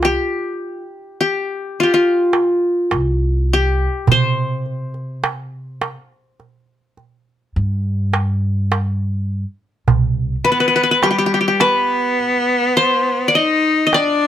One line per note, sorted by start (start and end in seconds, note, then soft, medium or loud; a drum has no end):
0.00 0.15 C2 medium
0.00 0.81 F4 medium
0.00 darbuka tek medium
0.05 1.20 G4 medium
1.21 1.83 G4 medium
1.80 1.93 F4 medium
1.80 3.09 G4 medium
1.94 3.56 F4 medium
2.33 darbuka tek medium
2.91 3.85 C2 medium
2.91 darbuka tek medium
3.53 4.79 G4 medium
4.07 5.95 C3 medium
4.07 darbuka dum medium
4.12 8.69 C5 medium
4.66 darbuka ka soft
4.94 darbuka ka soft
5.24 darbuka tek medium
5.81 darbuka tek medium
6.40 darbuka ka soft
6.97 darbuka ka soft
7.56 9.43 G2 medium
7.56 darbuka ka soft
8.13 darbuka tek medium
8.72 darbuka tek medium
9.88 10.34 C2 medium
9.88 darbuka dum medium
10.44 10.99 B3 medium
10.44 10.51 B4 medium
10.52 10.60 B4 medium
10.60 10.67 B4 medium
10.68 10.75 B4 medium
10.76 10.83 B4 medium
10.83 10.91 B4 medium
10.91 11.60 B4 medium
11.03 11.62 G3 medium
11.03 11.10 G4 medium
11.03 darbuka tek medium
11.11 11.18 G4 medium
11.18 11.26 G4 medium
11.26 11.34 G4 medium
11.34 11.40 G4 medium
11.41 11.47 G4 medium
11.48 12.73 G4 medium
11.60 13.37 B3 medium
11.60 12.83 B4 medium
11.60 darbuka tek medium
12.20 darbuka ka soft
12.77 13.82 C5 medium
13.28 13.41 D5 medium
13.35 13.94 D#4 medium
13.35 13.86 D#5 medium
13.87 14.00 D#5 medium
13.93 14.27 D4 loud
13.93 14.27 D5 medium
13.93 darbuka tek medium